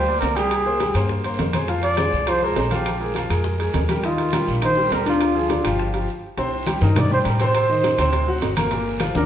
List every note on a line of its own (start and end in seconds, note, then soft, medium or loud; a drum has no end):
0.00 0.19 D2 loud
0.00 0.20 C5 loud
0.07 0.19 A#3 medium
0.07 0.20 A#4 medium
0.07 0.20 D5 medium
0.07 high bongo soft
0.07 high conga soft
0.20 0.90 C2 medium
0.20 0.34 A#3 medium
0.20 0.38 A#4 loud
0.20 0.34 A#4 medium
0.20 0.34 D5 medium
0.20 high bongo soft
0.20 low bongo medium
0.20 high conga soft
0.20 high timbale medium
0.20 low timbale medium
0.20 short guiro medium
0.36 0.60 G3 medium
0.36 0.60 G4 medium
0.36 1.24 G#4 loud
0.36 0.60 G5 medium
0.36 high bongo soft
0.36 high timbale medium
0.36 short guiro medium
0.51 high bongo medium
0.51 high conga soft
0.51 high timbale medium
0.51 claves soft
0.66 0.78 A#3 medium
0.66 0.78 A#4 medium
0.66 0.78 C5 medium
0.66 high bongo soft
0.66 high conga soft
0.79 0.92 G3 medium
0.79 0.93 G4 medium
0.79 0.93 G5 medium
0.79 high bongo medium
0.79 high conga soft
0.79 high timbale medium
0.79 low timbale medium
0.79 short guiro medium
0.94 1.36 G2 medium
0.94 1.19 A#3 medium
0.94 1.19 A#4 medium
0.94 1.19 C5 medium
0.94 high conga soft
0.94 high timbale medium
0.94 short guiro medium
0.94 claves medium
1.09 high bongo medium
1.09 high conga soft
1.09 long guiro medium
1.24 1.49 A#3 medium
1.24 1.49 A#4 medium
1.24 1.49 C5 medium
1.24 high bongo soft
1.24 high conga soft
1.24 high timbale medium
1.38 2.07 F2 medium
1.38 high bongo soft
1.38 low bongo medium
1.38 high conga medium
1.38 high timbale medium
1.38 low timbale medium
1.38 short guiro medium
1.53 1.66 G#3 medium
1.53 1.66 G#4 medium
1.53 1.66 C5 medium
1.53 high bongo soft
1.53 high conga medium
1.53 high timbale loud
1.53 short guiro medium
1.53 claves medium
1.68 1.92 F3 medium
1.68 1.93 F4 medium
1.68 1.93 F5 medium
1.68 high bongo medium
1.68 high conga soft
1.68 high timbale medium
1.68 long guiro medium
1.83 2.31 D5 loud
1.83 high bongo soft
1.83 high conga soft
1.83 high timbale medium
1.97 2.22 G#3 medium
1.97 2.22 G#4 medium
1.97 2.22 C5 medium
1.97 high bongo medium
1.97 high conga medium
1.97 high timbale medium
1.97 low timbale medium
1.97 short guiro medium
1.97 claves medium
2.12 2.53 C2 medium
2.12 short guiro medium
2.27 2.39 F3 medium
2.27 2.39 F4 medium
2.27 2.46 C5 medium
2.27 2.39 F5 medium
2.27 high bongo medium
2.27 high conga soft
2.27 high timbale medium
2.27 long guiro medium
2.27 claves medium
2.42 2.54 G#3 medium
2.42 2.54 G#4 medium
2.42 2.72 A#4 medium
2.42 2.54 C5 medium
2.42 high bongo soft
2.42 high conga soft
2.56 3.25 A#1 medium
2.56 2.68 G#3 medium
2.56 2.68 G#4 medium
2.56 2.69 C5 medium
2.56 high bongo soft
2.56 low bongo medium
2.56 high conga soft
2.56 high timbale medium
2.56 low timbale medium
2.56 short guiro medium
2.71 2.95 F3 medium
2.71 2.95 F4 medium
2.71 3.14 G4 medium
2.71 2.95 F5 medium
2.71 high bongo soft
2.71 high conga medium
2.71 high timbale medium
2.71 short guiro medium
2.86 high bongo medium
2.86 high conga soft
2.86 high timbale medium
2.86 long guiro medium
2.86 claves medium
3.00 3.12 G#3 medium
3.00 3.13 G#4 medium
3.00 3.13 A#4 medium
3.00 high bongo soft
3.00 high conga soft
3.15 3.27 F3 medium
3.15 3.27 F4 medium
3.15 3.28 F5 medium
3.15 high bongo medium
3.15 high conga medium
3.15 high timbale medium
3.15 low timbale medium
3.15 short guiro medium
3.30 3.71 F2 medium
3.30 3.54 G#3 medium
3.30 3.54 G#4 medium
3.30 3.54 A#4 medium
3.30 high conga soft
3.30 high timbale medium
3.30 short guiro medium
3.30 claves medium
3.44 high bongo medium
3.44 high conga soft
3.44 long guiro medium
3.59 3.83 G#3 medium
3.59 3.84 G#4 medium
3.59 3.84 A#4 medium
3.59 high bongo soft
3.59 high conga soft
3.59 high timbale medium
3.74 4.42 D#2 medium
3.74 high bongo soft
3.74 low bongo medium
3.74 high conga medium
3.74 high timbale medium
3.74 low timbale medium
3.74 short guiro medium
3.88 4.01 G3 medium
3.88 4.01 G4 medium
3.88 4.01 A#4 medium
3.88 high bongo soft
3.88 high conga medium
3.88 high timbale medium
3.88 short guiro medium
3.88 claves medium
4.03 4.28 D#3 medium
4.03 4.28 D#4 medium
4.03 4.59 F4 loud
4.03 4.28 D#5 medium
4.03 high bongo medium
4.03 high conga soft
4.03 high timbale medium
4.03 long guiro medium
4.18 high bongo soft
4.18 high conga soft
4.18 high timbale medium
4.32 4.57 G3 medium
4.32 4.58 G4 medium
4.32 4.58 A#4 medium
4.32 high bongo medium
4.32 high conga medium
4.32 high timbale loud
4.32 low timbale medium
4.32 short guiro medium
4.32 claves medium
4.48 4.88 A#1 medium
4.48 short guiro medium
4.62 4.74 D#3 medium
4.62 4.74 D#4 medium
4.62 4.94 C5 loud
4.62 4.75 D#5 medium
4.62 high bongo medium
4.62 high conga soft
4.62 high timbale medium
4.62 long guiro medium
4.62 claves medium
4.77 4.89 G3 medium
4.77 4.89 G4 medium
4.77 4.89 A#4 medium
4.77 high bongo soft
4.77 high conga soft
4.91 5.59 D2 medium
4.91 5.04 G3 medium
4.91 5.04 G4 medium
4.91 5.04 A#4 medium
4.91 5.07 A#4 medium
4.91 high bongo soft
4.91 low bongo medium
4.91 high conga soft
4.91 high timbale medium
4.91 low timbale medium
4.91 short guiro medium
5.06 5.30 D3 medium
5.06 5.30 D4 medium
5.06 5.92 F4 medium
5.06 5.30 D5 medium
5.06 high bongo soft
5.06 high timbale medium
5.06 short guiro medium
5.21 high bongo medium
5.21 high conga soft
5.21 high timbale medium
5.21 long guiro medium
5.21 claves medium
5.35 5.47 F3 medium
5.35 5.47 F4 medium
5.35 5.47 G#4 medium
5.35 high bongo soft
5.35 high conga soft
5.49 5.61 D3 medium
5.49 5.62 D4 medium
5.49 5.62 D5 medium
5.49 high bongo medium
5.49 high conga medium
5.49 high timbale medium
5.49 low timbale medium
5.49 short guiro medium
5.64 6.06 G1 medium
5.64 5.88 F3 medium
5.64 5.88 F4 medium
5.64 5.89 G4 medium
5.64 high conga soft
5.64 high timbale medium
5.64 short guiro medium
5.64 claves medium
5.79 high bongo medium
5.79 high conga soft
5.79 long guiro medium
5.94 6.06 F3 medium
5.94 6.06 F4 medium
5.94 6.06 G4 medium
5.94 high bongo soft
5.94 high conga soft
5.94 high timbale medium
6.37 6.78 C2 medium
6.37 6.62 C3 medium
6.37 6.62 C4 medium
6.37 6.62 C5 medium
6.37 high bongo medium
6.37 high conga soft
6.37 high timbale medium
6.37 long guiro medium
6.52 high bongo soft
6.52 high conga soft
6.66 6.79 G3 medium
6.66 6.79 G4 medium
6.66 6.80 G5 medium
6.66 high bongo medium
6.66 high conga medium
6.66 high timbale medium
6.66 short guiro medium
6.66 claves medium
6.81 7.22 G2 loud
6.81 7.06 D#3 medium
6.81 7.06 D#4 medium
6.81 7.00 A#4 medium
6.81 7.06 D#5 medium
6.81 high conga medium
6.81 short guiro medium
6.95 7.12 D5 loud
6.95 high bongo medium
6.95 high conga soft
6.95 low conga loud
6.95 high timbale medium
6.95 long guiro medium
6.95 claves medium
7.11 7.35 G3 medium
7.11 7.35 G4 medium
7.11 7.19 C5 medium
7.11 7.35 G5 medium
7.11 high bongo soft
7.11 high conga soft
7.11 low conga medium
7.25 7.93 A2 medium
7.25 high bongo soft
7.25 low bongo medium
7.25 high conga soft
7.25 high timbale medium
7.25 short guiro medium
7.29 7.46 A#4 medium
7.39 7.64 C3 medium
7.39 7.65 C4 medium
7.39 7.65 C5 medium
7.39 high bongo soft
7.39 high conga soft
7.39 high timbale medium
7.39 short guiro medium
7.44 8.30 C5 loud
7.54 high bongo medium
7.54 high conga soft
7.54 high timbale medium
7.54 long guiro medium
7.54 claves medium
7.69 7.93 D#3 medium
7.69 7.94 D#4 medium
7.69 7.94 D#5 medium
7.69 high bongo soft
7.69 high conga soft
7.84 high bongo medium
7.84 high conga medium
7.84 high timbale medium
7.84 short guiro medium
7.98 8.39 D2 loud
7.98 8.23 C3 medium
7.98 8.23 C4 medium
7.98 8.23 C5 medium
7.98 high conga soft
7.98 high timbale medium
7.98 short guiro medium
7.98 claves medium
8.13 high bongo medium
8.13 high conga soft
8.13 high timbale medium
8.13 long guiro medium
8.27 8.52 F#3 medium
8.27 8.52 F#4 medium
8.27 8.52 F#5 medium
8.27 high bongo soft
8.27 high conga soft
8.42 9.10 G1 medium
8.42 high bongo soft
8.42 low bongo medium
8.42 high conga soft
8.42 high timbale medium
8.42 low timbale medium
8.42 short guiro medium
8.56 8.69 A#3 medium
8.56 8.69 A#4 medium
8.56 8.69 A#5 medium
8.56 high bongo soft
8.56 high conga medium
8.56 high timbale loud
8.56 short guiro medium
8.56 claves medium
8.70 8.95 A#2 medium
8.70 8.96 A#3 medium
8.70 8.96 A#4 medium
8.70 high bongo medium
8.70 high conga soft
8.70 high timbale medium
8.70 long guiro medium
8.86 high bongo soft
8.86 high conga soft
9.00 9.12 F3 medium
9.00 9.13 F4 medium
9.00 9.13 F5 medium
9.00 high bongo medium
9.00 high conga medium
9.00 high timbale medium
9.00 short guiro medium
9.00 claves medium
9.15 9.26 D2 medium
9.15 9.26 D3 medium
9.15 9.26 D4 medium
9.15 9.26 A#4 medium
9.15 9.26 D5 medium
9.15 high conga loud
9.15 short guiro medium